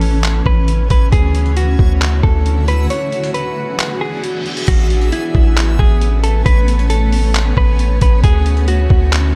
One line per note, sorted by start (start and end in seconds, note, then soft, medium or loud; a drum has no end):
0.00 0.42 A1 loud
0.00 1.09 E3 medium
0.00 1.09 B3 medium
0.00 1.11 B3 medium
0.00 2.86 C#4 medium
0.00 0.42 A4 medium
0.00 1.09 C#5 medium
0.00 1.08 G#5 medium
0.00 open hi-hat medium
0.24 clap loud
0.24 closed hi-hat medium
0.46 0.88 A1 loud
0.46 0.88 B4 medium
0.46 kick medium
0.68 closed hi-hat medium
0.90 1.12 A1 loud
0.90 1.12 B4 medium
0.90 kick loud
0.90 closed hi-hat medium
1.12 1.76 D2 loud
1.12 2.88 D3 medium
1.12 2.88 A3 medium
1.12 2.88 C#4 medium
1.12 2.88 E4 medium
1.12 4.64 F#4 medium
1.12 2.88 F#4 medium
1.12 1.54 G#4 loud
1.12 2.88 E5 medium
1.12 kick loud
1.12 closed hi-hat medium
1.35 closed hi-hat medium
1.46 closed hi-hat soft
1.57 2.20 F#4 medium
1.57 closed hi-hat medium
1.79 2.22 D2 loud
1.79 kick medium
2.01 clap loud
2.01 closed hi-hat medium
2.23 2.88 D2 loud
2.23 2.65 A4 medium
2.23 kick medium
2.46 closed hi-hat medium
2.68 2.89 B4 medium
2.68 closed hi-hat medium
2.90 4.66 E3 medium
2.90 4.66 B3 medium
2.90 4.66 D4 medium
2.90 4.66 G#4 medium
2.90 3.32 C#5 medium
2.90 4.66 E5 medium
2.90 closed hi-hat medium
3.12 closed hi-hat medium
3.24 closed hi-hat medium
3.34 3.97 B4 medium
3.34 closed hi-hat medium
3.79 clap loud
3.79 closed hi-hat medium
3.79 reverse cymbal medium
4.01 4.22 G#4 medium
4.24 closed hi-hat medium
4.46 closed hi-hat soft
4.57 closed hi-hat medium
4.68 5.11 A1 loud
4.68 8.20 A3 medium
4.68 8.20 B3 medium
4.68 9.35 C#4 medium
4.68 5.10 F#4 loud
4.68 8.20 C#5 medium
4.68 8.20 G#5 medium
4.68 kick loud
4.68 closed hi-hat medium
4.68 crash loud
4.90 closed hi-hat medium
5.01 closed hi-hat soft
5.12 5.75 E4 medium
5.12 closed hi-hat medium
5.35 5.77 A1 loud
5.35 kick loud
5.57 clap loud
5.57 closed hi-hat medium
5.79 6.43 A1 loud
5.79 6.21 G#4 medium
5.79 kick loud
6.01 closed hi-hat medium
6.24 6.45 A4 medium
6.24 closed hi-hat medium
6.46 7.53 A1 loud
6.46 6.88 B4 loud
6.46 kick loud
6.46 closed hi-hat medium
6.68 closed hi-hat medium
6.79 closed hi-hat soft
6.90 7.53 A4 medium
6.90 closed hi-hat medium
7.12 open hi-hat medium
7.35 clap loud
7.35 closed hi-hat medium
7.57 8.00 A1 loud
7.57 7.99 B4 medium
7.57 kick loud
7.79 closed hi-hat medium
8.01 8.23 A1 loud
8.01 8.23 B4 medium
8.01 kick loud
8.01 closed hi-hat medium
8.24 8.88 D2 loud
8.24 9.35 D3 medium
8.24 9.35 A3 medium
8.24 9.35 C#4 medium
8.24 9.35 E4 medium
8.24 9.35 F#4 medium
8.24 8.65 G#4 loud
8.24 9.35 E5 medium
8.24 kick loud
8.24 closed hi-hat medium
8.46 closed hi-hat medium
8.57 closed hi-hat soft
8.68 9.31 F#4 medium
8.68 closed hi-hat medium
8.90 9.33 D2 loud
8.90 kick loud
9.12 clap loud
9.12 closed hi-hat medium